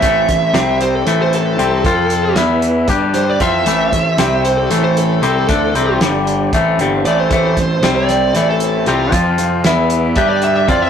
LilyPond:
<<
  \new Staff \with { instrumentName = "Lead electric guitar" } { \time 7/8 \key a \minor \tempo 4 = 115 e''4. c''16 a'8 c''16 a'4~ | a'4 r4. c''16 d''16 e''8~ | e''4. c''16 a'8 c''16 a'4~ | a'4 r2 d''16 c''16~ |
c''4~ c''16 d''4 a'8. f'8 | r2 e''16 d''16 e''16 e''16 d''16 e''16 | }
  \new Staff \with { instrumentName = "Tonewheel organ" } { \time 7/8 \key a \minor c''2 c''4.~ | c''4 e''4 d''4 c''8~ | c''4 c''2~ c''8~ | c''4 d''4 c''4.~ |
c''4 r2 r8 | r4 e''4 d''4 c''8 | }
  \new Staff \with { instrumentName = "Tonewheel organ" } { \time 7/8 \key a \minor <e c' a'>4 <c g g'>4 <e c' a'>4. | <c f f'>4 <e b b'>4 <d g g'>4 <e c' a'>8~ | <e c' a'>4 <c g g'>4 <e c' a'>4.~ | <e c' a'>4 <d g g'>4 <e c' a'>4.~ |
<e c' a'>4 <c g g'>4 <e c' a'>4. | <c f f'>4 <e b b'>4 <d g g'>4 <e c' a'>8 | }
  \new Staff \with { instrumentName = "Clean electric guitar" } { \clef bass \time 7/8 \key a \minor <a, e a>8 <a, e>8 <c g c'>4 <a, e a>4 <c g c'>8 | <f c' f'>4 <e b e'>4 <g d' g'>4 <f c' f'>8 | <a, e a>8 <a, e>8 <c g c'>4 <a, e a>4 <c g c'>8 | <d a d'>8 <c g c'>8 <g, d g>4 <a, e a>8 <g, d g>8 <a, e a>8 |
<a, e a>8 <a, e>8 <c g c'>4 <a, e a>4 <c g c'>8 | <f c' f'>4 <e b e'>4 <g d' g'>4 <f c' f'>8 | }
  \new Staff \with { instrumentName = "Picked electric bass" } { \clef bass \time 7/8 \key a \minor a,,8 a,,8 c,4 a,,4 c,8 | f,4 e,4 g,4 f,8 | a,,8 a,,8 c,4 a,,4 c,8 | d,8 c,8 g,,4 a,,8 g,,8 a,,8 |
a,,8 a,,8 c,4 a,,4 c,8 | f,4 e,4 g,4 f,8 | }
  \new DrumStaff \with { instrumentName = "Drums" } \drummode { \time 7/8 <hh bd>8 <hh bd sn>8 <hh sn>8 hh8 <hh sn>8 hh8 hh8 | <hh bd>8 hh8 <hh sn>8 hh8 <hh bd>8 <hh sn>8 <hh bd>8 | hh8 <hh bd>8 <hh sn>8 hh8 hh8 hh8 hh8 | <hh bd>8 hh8 <hh sn>8 hh8 <hh bd>8 hh8 hh8 |
<hh bd>8 <hh bd sn>8 <hh sn>8 <hh sn>8 <hh sn>8 hh8 hh8 | <hh bd>8 <hh sn>8 <hh sn>8 hh8 <hh bd>8 hh8 <hh bd>8 | }
>>